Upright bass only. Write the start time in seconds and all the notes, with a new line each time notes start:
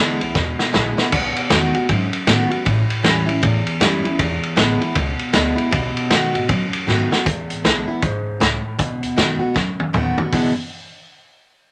Already playing: B1
0.21 C#2
0.35 E2
0.74 A#1
1.12 B1
1.37 muted upright bass stroke
1.51 E2
1.74 muted upright bass stroke
1.89 G#2
2.27 A2
2.66 A1
3.04 E2
3.28 F#2
3.43 A2
3.80 F#2
4.06 muted upright bass stroke
4.19 E1
4.43 muted upright bass stroke
4.58 A1
4.96 C#2
5.21 muted upright bass stroke
5.35 D2
5.72 B1
6.11 F#2
6.35 G#2
6.49 B2
6.72 muted upright bass stroke
6.87 G#2
7.11 muted upright bass stroke
7.27 E1
7.50 G#1
7.64 B1
7.89 muted upright bass stroke
8.02 G#1
8.27 B1
8.40 C#2
8.79 B1
9.02 D#2
9.17 F#2
9.56 D#2
9.80 F#2
9.94 D#2
10.18 muted upright bass stroke